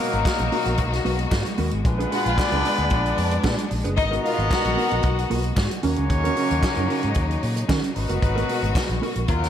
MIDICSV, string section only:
0, 0, Header, 1, 2, 480
1, 0, Start_track
1, 0, Tempo, 530973
1, 1673, Time_signature, 4, 2, 24, 8
1, 8581, End_track
2, 0, Start_track
2, 0, Title_t, "String section"
2, 0, Program_c, 0, 48
2, 0, Note_on_c, 0, 47, 80
2, 0, Note_on_c, 0, 56, 82
2, 0, Note_on_c, 0, 58, 81
2, 0, Note_on_c, 0, 66, 91
2, 1639, Note_off_c, 0, 58, 0
2, 1654, Note_off_c, 0, 47, 0
2, 1656, Note_off_c, 0, 66, 0
2, 1679, Note_on_c, 0, 62, 79
2, 1680, Note_on_c, 0, 46, 73
2, 1680, Note_on_c, 0, 59, 63
2, 3578, Note_off_c, 0, 46, 0
2, 3578, Note_off_c, 0, 62, 0
2, 3579, Note_off_c, 0, 59, 0
2, 3596, Note_on_c, 0, 66, 75
2, 3601, Note_on_c, 0, 47, 78
2, 5240, Note_off_c, 0, 56, 0
2, 5258, Note_off_c, 0, 66, 0
2, 5261, Note_off_c, 0, 47, 0
2, 5279, Note_on_c, 0, 49, 74
2, 5279, Note_on_c, 0, 54, 77
2, 5279, Note_on_c, 0, 63, 93
2, 7177, Note_off_c, 0, 49, 0
2, 7177, Note_off_c, 0, 54, 0
2, 7177, Note_off_c, 0, 63, 0
2, 7189, Note_on_c, 0, 47, 83
2, 7192, Note_on_c, 0, 66, 89
2, 7194, Note_on_c, 0, 56, 73
2, 8381, Note_off_c, 0, 47, 0
2, 8382, Note_off_c, 0, 66, 0
2, 8384, Note_off_c, 0, 56, 0
2, 8392, Note_on_c, 0, 49, 73
2, 8393, Note_on_c, 0, 54, 76
2, 8393, Note_on_c, 0, 65, 87
2, 8394, Note_on_c, 0, 63, 74
2, 8581, Note_off_c, 0, 49, 0
2, 8581, Note_off_c, 0, 54, 0
2, 8581, Note_off_c, 0, 63, 0
2, 8581, Note_off_c, 0, 65, 0
2, 8581, End_track
0, 0, End_of_file